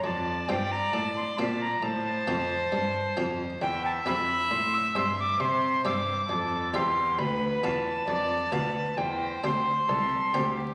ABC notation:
X:1
M:4/4
L:1/16
Q:1/4=67
K:F
V:1 name="Recorder"
a2 g b a c' a b a6- a z | [K:C] g a b2 c' e' c' d' c'2 d'4 c'2 | b2 a6 g2 c'4- c' z |]
V:2 name="Violin"
d8 c8 | [K:C] e8 c4 A2 G2 | B4 d2 B2 c4 A2 G2 |]
V:3 name="Harpsichord"
z2 [CFc]4 [CFc]2 z2 [CFc]4 [CFc]2 | [K:C] z2 [CGe]4 [CGe]2 z2 [CGe]4 [CGe]2 | z2 [B,Ff]4 [B,Ff]2 z2 [CGc]4 [CGc]2 |]
V:4 name="Harpsichord" clef=bass
F,,2 G,,2 A,,2 B,,2 A,,2 F,,2 G,,2 F,,2 | [K:C] E,,2 F,,2 A,,2 G,,2 C,2 G,,2 F,,2 E,,2 | D,,2 E,,2 F,,2 D,,2 E,,2 D,,2 C,,2 D,,2 |]
V:5 name="Cello" clef=bass
F,,2 G,,2 A,,2 B,,2 A,,2 F,,2 G,,2 F,,2 | [K:C] E,,2 F,,2 A,,2 G,,2 C,2 G,,2 F,,2 E,,2 | D,,2 E,,2 F,,2 D,,2 E,,2 D,,2 C,,2 D,,2 |]